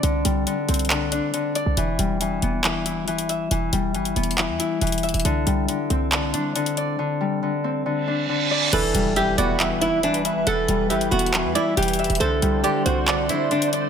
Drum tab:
CC |------------------------------------------------------------------------------------------------|------------------------------------------------------------------------------------------------|------------------------------------------------------------------------------------------------|------------------------------------------------------------------------------------------------|
HH |x-----------x-----------x-----------x--x--x--x--x-----------x-----------x-----------x-----------|x-----------x-----------x-----------x-----------x-----------x-----------x-----x-----x-----------|x-----------x-----------x-----x-----x---x---x---x-----------x-----------x--x--x--x--x--x--x--x--|x-----------x-----------x-----------x-----------x-----------x-----------x-----x-----x-----------|
CP |------------------------------------------------x-----------------------------------------------|------------------------------------------------x-----------------------------------------------|------------------------------------------------x-----------------------------------------------|------------------------------------------------x-----------------------------------------------|

CC |------------------------------------------------------------------------------------------------|x-----------------------------------------------------------------------------------------------|------------------------------------------------------------------------------------------------|------------------------------------------------------------------------------------------------|
HH |------------------------------------------------------------------------------------------------|x-----------x-----------x-----------x-----------x-----------x-----------x-----x-----x-----------|x-----------x-----------x-----x-----x---x---x---x-----------x-----------x--x--x--x--x--x--x--x--|x-----------x-----------x-----------x-----------x-----------x-----------x-----x-----x-----------|
CP |------------------------------------------------------------------------------------------------|------------------------------------------------x-----------------------------------------------|------------------------------------------------x-----------------------------------------------|------------------------------------------------x-----------------------------------------------|